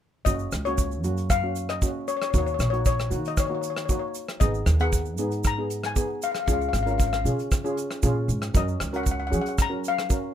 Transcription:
0.25 upright bass F#1, steel pan A#3 C#4 F#4 D#5, kick, closed hi-hat, shaker
0.39 shaker
0.52 upright bass C#2, cross-stick, closed hi-hat, shaker
0.65 steel pan A#3 C#4 F#4 C#5, closed hi-hat
0.78 kick, closed hi-hat, shaker
0.91 shaker
1.03 upright bass F#2, steel pan A#3 C#4 F#4, closed hi-hat, shaker
1.17 closed hi-hat, shaker
1.30 steel pan F5, kick, cross-stick, closed hi-hat, shaker
1.43 steel pan A#3 C#4 F#4
1.56 closed hi-hat, shaker
1.69 steel pan D#5, cross-stick, closed hi-hat
1.82 steel pan A#3 C#4 F#4, kick, closed hi-hat, shaker
2.08 steel pan C#5, closed hi-hat, shaker
2.17 steel pan C#5
2.22 steel pan C#5, cross-stick, closed hi-hat
2.30 upright bass D#2, steel pan A#3 D#4 F#4 C#5, kick, closed hi-hat, shaker
2.38 steel pan C#5
2.46 steel pan C#5, shaker
2.54 steel pan C#5
2.59 upright bass A#1, steel pan C#5, cross-stick, closed hi-hat, shaker
2.70 steel pan A#3 D#4 F#4 C#5, closed hi-hat
2.85 steel pan C#5, kick, closed hi-hat, shaker
2.99 cross-stick, shaker
3.11 upright bass D#3, steel pan A#3 D#4 F#4, closed hi-hat, shaker
3.25 steel pan D#5, closed hi-hat, shaker
3.37 steel pan C#5, kick, cross-stick, closed hi-hat, shaker
3.47 steel pan A#3 D#4 F#4 C#5
3.55 steel pan C#5
3.61 steel pan C#5, closed hi-hat, shaker
3.70 steel pan C#5
3.77 steel pan C#5, cross-stick, closed hi-hat
3.85 steel pan A#3 D#4 F#4 C#5, kick, closed hi-hat, shaker
3.92 steel pan C#5
3.99 steel pan C#5
4.14 closed hi-hat, shaker
4.28 cross-stick, closed hi-hat
4.40 upright bass G#1, steel pan B3 D#4 G#4 D#5, kick, closed hi-hat, shaker
4.54 shaker
4.66 upright bass D#2, cross-stick, closed hi-hat, shaker
4.79 steel pan B3 D#4 G#4 F#5, closed hi-hat
4.93 kick, closed hi-hat, shaker
5.05 shaker
5.18 upright bass G#2, steel pan B3 D#4 G#4, closed hi-hat, shaker
5.31 closed hi-hat, shaker
5.44 steel pan A#5, kick, cross-stick, closed hi-hat, shaker
5.58 steel pan B3 D#4 G#4
5.70 closed hi-hat, shaker
5.84 steel pan G#5, cross-stick, closed hi-hat
5.96 steel pan B3 D#4 G#4, kick, closed hi-hat, shaker
6.22 steel pan F5, closed hi-hat, shaker
6.32 steel pan F5, cross-stick, closed hi-hat
6.39 steel pan F5
6.46 upright bass C#2, steel pan C#4 F4 G#4 F5, kick, closed hi-hat, shaker
6.53 steel pan F5
6.61 steel pan F5, shaker
6.69 steel pan F5
6.73 upright bass G#1, steel pan F5, cross-stick, closed hi-hat, shaker
6.83 steel pan C#4 A#4 F5
6.87 steel pan F4, closed hi-hat, shaker
6.91 steel pan F5
6.98 steel pan F5, kick, closed hi-hat, shaker
7.07 steel pan F5
7.13 steel pan F5, cross-stick, shaker
7.24 upright bass C#3, steel pan C#4 F4 G#4, closed hi-hat, shaker
7.39 closed hi-hat, shaker
7.51 kick, cross-stick, closed hi-hat, shaker
7.64 steel pan C#4 F4 G#4, shaker
7.77 closed hi-hat, shaker
7.91 cross-stick, closed hi-hat, shaker
8.03 upright bass A#2, steel pan C#4 F4 G#4, kick, closed hi-hat, shaker
8.28 upright bass G#2, closed hi-hat, shaker
8.42 cross-stick, closed hi-hat, shaker
8.54 upright bass F#2, steel pan C#4 F#4 A#4 D#5, kick, closed hi-hat, shaker
8.68 shaker
8.80 upright bass C#2, cross-stick, closed hi-hat, shaker
8.93 steel pan C#4 F#4 A#4 F#5, closed hi-hat
9.03 steel pan F#5, kick, closed hi-hat, shaker
9.11 steel pan F#5
9.20 steel pan F#5
9.27 steel pan C#4 F#5
9.31 upright bass F#3, steel pan F#4 G#4 F#5, closed hi-hat, shaker
9.41 steel pan F#5
9.46 steel pan F#5, closed hi-hat, shaker
9.58 steel pan A#5, kick, cross-stick, closed hi-hat, shaker
9.70 steel pan C#4 F#4 A#4
9.84 closed hi-hat, shaker
9.88 steel pan F5
9.98 cross-stick, closed hi-hat
10.09 steel pan C#4 F#4 A#4, kick, closed hi-hat, shaker

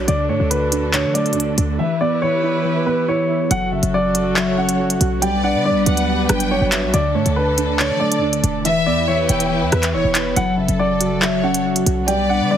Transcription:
Already playing: string section D4
0.08 808-style bass D2, string section D3 F#4 A4, synth keys D3, grand piano D5, closed hi-hat
0.29 808-style bass A2, synth keys A3, grand piano C#5
0.40 808-style bass D2
0.50 synth keys D3, grand piano B4, closed hi-hat
0.72 synth keys D4, closed hi-hat
0.94 synth keys D3, grand piano C#5, clap, closed hi-hat
1.04 808-style bass F#3
1.14 synth keys A3, grand piano D5, closed hi-hat
1.26 closed hi-hat
1.31 808-style bass D2, closed hi-hat
1.36 synth keys D4, closed hi-hat
1.58 808-style bass D2, synth keys D4, closed hi-hat
1.79 string section E3 E4 G4 B4, synth keys E3, grand piano E5
2.01 synth keys B3, grand piano D5
2.22 synth keys E3, grand piano C#5
2.44 synth keys E4
2.65 synth keys E3
2.86 synth keys B3, grand piano B4
3.08 synth keys E4, grand piano C#5
3.29 synth keys E4
3.50 808-style bass F#1, synth keys F#3, string section F#3 F#4 A4, grand piano F#5, closed hi-hat
3.72 808-style bass G1, synth keys C#3, grand piano E5
3.83 808-style bass F#1, closed hi-hat
3.94 synth keys F#3, grand piano D5
4.15 synth keys F#4, closed hi-hat
4.36 synth keys F#3, violin section C#5, grand piano E5, clap
4.58 synth keys C#4, grand piano F#5
4.69 closed hi-hat
4.80 synth keys F#4
4.90 closed hi-hat
5.01 808-style bass B1, synth keys F#4, closed hi-hat
5.22 synth keys G3, string section B3 D4 B4, violin section D5, grand piano G5, closed hi-hat
5.44 synth keys D4, grand piano F#5
5.54 808-style bass D3
5.65 synth keys G3, grand piano D5
5.70 808-style bass B1
5.86 808-style bass D2, synth keys F#3, violin section F#5, closed hi-hat
5.97 closed hi-hat
6.08 synth keys G3
6.29 808-style bass G1, synth keys D4, grand piano B4, violin section G5, cross-stick, closed hi-hat
6.40 closed hi-hat
6.51 synth keys F#4, grand piano C#5
6.61 808-style bass G1
6.72 synth keys F#4, violin section E5, clap, closed hi-hat
6.83 808-style bass B1
6.94 808-style bass D2, string section D3 A4, synth keys D3, grand piano D5, closed hi-hat
7.15 808-style bass A2, synth keys A3, grand piano C#5
7.26 808-style bass D2, closed hi-hat
7.36 synth keys D3, grand piano B4
7.58 synth keys D4, closed hi-hat
7.79 synth keys D3, grand piano C#5, violin section D5, clap
7.90 808-style bass F#3
8.00 synth keys A3, grand piano D5
8.12 closed hi-hat
8.17 808-style bass D2
8.22 synth keys D4
8.33 closed hi-hat
8.44 808-style bass E1, synth keys D4, closed hi-hat
8.65 synth keys E3, string section E3 E4 G4 B4, grand piano E5, violin section E5, closed hi-hat
8.86 808-style bass E2, synth keys B3, grand piano D5
9.08 synth keys E3, grand piano C#5
9.29 808-style bass E1, synth keys E4, violin section G5, closed hi-hat
9.40 closed hi-hat
9.51 synth keys E3
9.61 808-style bass E2
9.72 808-style bass E2, synth keys B3, grand piano B4, violin section E5, cross-stick, closed hi-hat
9.83 clap, closed hi-hat
9.94 808-style bass D1, synth keys E4, violin section C#5, grand piano C#5
10.04 808-style bass E1
10.15 synth keys E4, violin section B4, clap, closed hi-hat
10.36 808-style bass F#1, synth keys F#3, string section F#3 A4, grand piano F#5, closed hi-hat
10.57 808-style bass G1, synth keys C#3, grand piano E5
10.68 808-style bass F#1, closed hi-hat
10.79 synth keys F#3, grand piano D5
11.01 synth keys F#4, closed hi-hat
11.22 synth keys F#3, violin section C#5, grand piano E5, clap
11.43 synth keys C#4, grand piano F#5
11.54 closed hi-hat
11.66 synth keys F#4
11.76 closed hi-hat
11.86 808-style bass B1, synth keys F#4, closed hi-hat
12.07 synth keys G3, string section B3 D4 B4, violin section D5, grand piano G5, closed hi-hat
12.29 synth keys D4, grand piano F#5
12.40 808-style bass D3
12.51 synth keys G3, grand piano D5

